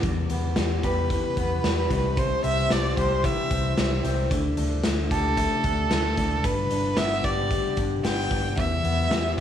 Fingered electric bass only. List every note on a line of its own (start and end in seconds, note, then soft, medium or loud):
0.03 0.25 E2 medium
0.30 0.52 E2 medium
0.57 0.79 E2 medium
0.83 1.16 E2 medium
1.37 1.59 E2 medium
1.64 1.85 E2 medium
1.91 2.34 C2 medium
2.44 2.66 C2 medium
2.71 2.92 C2 medium
2.97 3.30 C2 medium
3.51 3.73 C2 medium
3.78 3.99 C2 medium
4.04 4.26 C2 medium
4.31 4.53 D2 medium
4.58 4.80 D2 medium
4.85 5.07 D2 medium
5.11 5.44 D2 medium
5.64 5.86 D2 medium
5.91 6.13 D2 medium
6.17 6.39 D2 medium
6.44 6.66 G1 medium
6.71 6.93 G1 medium
6.97 7.19 G1 medium
7.24 7.57 G1 medium
7.77 7.99 G1 medium
8.04 8.26 G1 medium
8.31 8.53 G1 medium
8.58 8.80 E2 medium
8.84 9.06 E2 medium
9.10 9.33 E2 medium